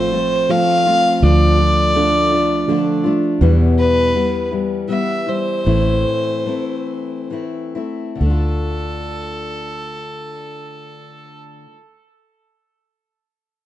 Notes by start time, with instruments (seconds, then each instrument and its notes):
Already playing: fingered electric bass A1, steel-string acoustic guitar F3 A3 C4 F4, felt piano F3 A3 C4, fiddle C5
0.12 steel-string acoustic guitar A3 C4 F4
0.49 steel-string acoustic guitar F3 A3 C4 F4, felt piano F3 A3 C4, fiddle F5
0.86 steel-string acoustic guitar A3 C4 F4
1.22 fingered electric bass D2, steel-string acoustic guitar D3 A3 D4 F4, felt piano F3, fiddle D5
1.58 felt piano F3
1.95 steel-string acoustic guitar D3 A3 D4 F4, felt piano F3 A3 D4
2.31 steel-string acoustic guitar A3 D4 F4
2.67 steel-string acoustic guitar D3 A3 D4 F4, felt piano F3 A3 D4
3.04 steel-string acoustic guitar A3 D4 F4
3.41 steel-string acoustic guitar E2 B2 E3 G3 B3 E4, fingered electric bass E2
3.78 fiddle B4
4.13 steel-string acoustic guitar E3 G3 B3 E4
4.51 steel-string acoustic guitar E3 G3 B3 E4
4.88 steel-string acoustic guitar E3 G3 B3 E4, fiddle E5
5.26 steel-string acoustic guitar E3 G3 E4, fiddle C5
5.65 fingered electric bass A1, steel-string acoustic guitar A2 E3 A3 C4 E4
6.46 steel-string acoustic guitar E3 A3 C4 E4
7.30 steel-string acoustic guitar E3 A3 C4 E4
7.75 steel-string acoustic guitar A3 C4 E4
8.15 steel-string acoustic guitar D3
8.20 fingered electric bass D2, steel-string acoustic guitar A3, fiddle A4
8.26 steel-string acoustic guitar D4
8.30 steel-string acoustic guitar F4